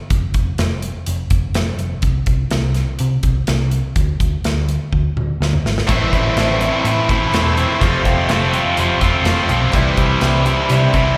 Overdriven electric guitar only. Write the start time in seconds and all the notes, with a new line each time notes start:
5.88 A2 E3 A3 C4 E4
6.37 E3 A3 C4 E4
6.61 A3 C4 E4
6.85 A2 E3 A3 C4 E4
7.09 A3 C4 E4
7.58 A3 C4 E4
7.81 F2 C3 F3 A3 C4 F4
8.30 F3 A3 C4 F4
8.53 F3 A3 C4 F4
8.78 F2 C3 F3 A3 C4 F4
9.01 F3 A3 C4 F4
9.49 F3 A3 C4 F4
9.73 C3 E3 G3 C4 E4
10.22 E3 G3 C4 E4
10.46 G3 C4 E4
10.70 C3 E3 G3 C4 E4
10.94 G3 C4 E4